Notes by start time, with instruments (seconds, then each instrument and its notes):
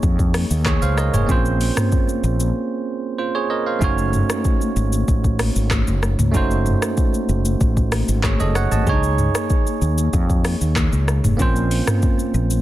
Already playing: tine electric piano D#4 G#4 C#5
0.03 fretless electric bass F2, kick, low conga, shaker
0.19 kick, shaker
0.34 cross-stick, open hi-hat, high conga, shaker
0.51 fretless electric bass D#2, shaker
0.66 tine electric piano G#4 C#5, kick, cross-stick, clap, high conga, low conga, shaker
0.82 fretless electric bass C#2, tine electric piano C5 F5, shaker
0.97 tine electric piano A#4 D#5, cross-stick, shaker
1.14 fretless electric bass F1, tine electric piano G#4 C#5, mid tom, high conga, shaker
1.26 fretless electric bass A#1, tine electric piano A#3 C4 C#4 F4, kick, low conga, shaker
1.31 tine electric piano C5
1.45 shaker
1.61 open hi-hat, shaker
1.77 cross-stick, mid tom, high conga, shaker
1.92 kick, shaker
2.07 high conga, shaker
2.24 fretless electric bass A#1, shaker
2.40 high conga, shaker
3.18 tine electric piano F4 C5
3.35 tine electric piano G#4 C#5
3.50 tine electric piano A#4 D#5
3.66 tine electric piano C5 F5
3.79 fretless electric bass F#1, tine electric piano A3 C#4 D#4 F#4, kick, low conga, shaker
3.84 tine electric piano C#5
3.98 high conga, shaker
4.13 mid tom, shaker
4.29 cross-stick, high conga, shaker
4.45 kick, shaker
4.60 high conga, shaker
4.76 fretless electric bass G#1, shaker
4.92 high conga, shaker
5.08 fretless electric bass A1, kick, low conga, shaker
5.24 kick, shaker
5.39 cross-stick, open hi-hat, high conga, shaker
5.56 fretless electric bass G#1, shaker
5.71 kick, cross-stick, clap, high conga, low conga, shaker
5.87 fretless electric bass F#1, shaker
6.03 cross-stick, shaker
6.19 fretless electric bass C#2, mid tom, high conga, shaker
6.32 fretless electric bass F#1, tine electric piano A3 C#4 D#4 F#4, kick, low conga, shaker
6.37 tine electric piano C5
6.51 high conga, shaker
6.66 mid tom, shaker
6.82 cross-stick, high conga, shaker
6.97 kick, shaker
7.13 high conga, shaker
7.29 fretless electric bass F#1, shaker
7.45 high conga, shaker
7.61 fretless electric bass A1, kick, low conga, shaker
7.77 kick, shaker
7.92 cross-stick, open hi-hat, high conga, shaker
8.08 fretless electric bass G#1, shaker
8.24 tine electric piano G#4 C#5, kick, cross-stick, clap, high conga, low conga, shaker
8.40 fretless electric bass F#1, tine electric piano A4 D#5, shaker
8.55 tine electric piano C#5 F#5, cross-stick, shaker
8.72 fretless electric bass G#1, tine electric piano D#5 A5, mid tom, high conga, shaker
8.84 fretless electric bass C#2, tine electric piano D4 G#4, kick, low conga, shaker
8.89 tine electric piano D#4 C#5
9.03 high conga, shaker
9.18 mid tom, shaker
9.34 cross-stick, high conga, shaker
9.50 kick, shaker
9.65 high conga, shaker
9.81 fretless electric bass D#2, shaker
9.98 high conga, shaker
10.13 fretless electric bass F2, kick, low conga, shaker
10.30 kick, shaker
10.45 cross-stick, open hi-hat, high conga, shaker
10.61 fretless electric bass D#2, shaker
10.76 kick, cross-stick, clap, high conga, low conga, shaker
10.93 fretless electric bass C#2, shaker
11.08 cross-stick, shaker
11.24 fretless electric bass F1, mid tom, high conga, shaker
11.37 fretless electric bass A#1, tine electric piano A#3 C4 C#4 F4, kick, low conga, shaker
11.42 tine electric piano C5
11.56 high conga, shaker
11.71 open hi-hat, shaker
11.87 cross-stick, mid tom, high conga, shaker
12.02 kick, shaker
12.18 high conga, shaker
12.34 fretless electric bass A#1, shaker
12.50 high conga, shaker